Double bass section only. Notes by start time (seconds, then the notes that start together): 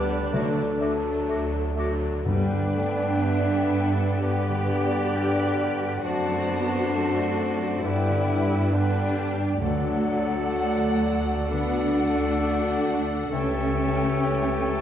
Already playing: D2
0.34 D2
1.29 D2
2.26 G2
6.04 F#2
7.85 G2
9.61 D2
13.31 C#2